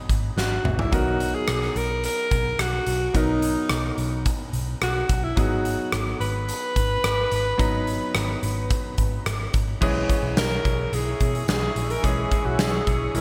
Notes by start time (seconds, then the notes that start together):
Already playing: F#3 B3 D#4 G#4
0.09 G#1, kick, closed hi-hat
0.37 G#1 F#4, snare
0.64 G#1, mid tom
0.79 E4, floor tom
0.91 B1 F#3 B3 D#4 F#4 A#4, kick, closed hi-hat
1.20 closed hi-hat
1.35 G#4
1.48 B1, cross-stick, closed hi-hat
1.76 B1 A#4, closed hi-hat
2.04 A#4, closed hi-hat
2.31 B1, kick, closed hi-hat
2.59 B1 F#4, cross-stick, closed hi-hat
2.86 B1, closed hi-hat
3.14 B1 F#3 B3 D#4 A#4, kick, closed hi-hat
3.42 closed hi-hat
3.69 B1, cross-stick, closed hi-hat
3.98 B1, closed hi-hat
4.26 kick, closed hi-hat
4.53 B1, closed hi-hat
4.81 B1 F#4, cross-stick, closed hi-hat
5.09 B1, kick, closed hi-hat
5.24 E4
5.36 G#1 F#3 B3 D#4 F#4 G#4, kick, closed hi-hat
5.65 closed hi-hat
5.92 G#1, cross-stick, closed hi-hat
6.20 G#1 B4, closed hi-hat
6.49 closed hi-hat
6.76 G#1, kick, closed hi-hat
7.04 G#1, cross-stick, closed hi-hat
7.31 G#1, closed hi-hat
7.57 G#1 F#3 B3 D#4 A#5, kick, closed hi-hat
7.87 closed hi-hat
8.15 G#1, cross-stick, closed hi-hat
8.43 G#1, closed hi-hat
8.70 kick, closed hi-hat
8.98 G#1, kick, closed hi-hat
9.26 G#1, cross-stick, closed hi-hat
9.54 G#1, kick, closed hi-hat
9.81 B1 E3 G#3 C#4 E4 G#4 C#5 E5 C#6, kick, crash
10.09 kick, closed hi-hat
10.23 B1
10.37 B1 A#4, snare, closed hi-hat, tambourine
10.65 B1, kick, closed hi-hat
10.93 B1 G#4, closed hi-hat
11.20 B2, kick, closed hi-hat
11.35 closed hi-hat
11.48 B1 G#4, snare, closed hi-hat, tambourine
11.76 A#1, closed hi-hat
11.90 A#4, closed hi-hat
12.02 B1 E3 G#3 C#4 G#4, kick, closed hi-hat
12.31 kick, closed hi-hat
12.45 B1 F#4
12.59 B1 G#4, snare, closed hi-hat, tambourine
12.87 B1, kick, closed hi-hat
13.14 B1 E3 G#3 C#4 E4 A#4, closed hi-hat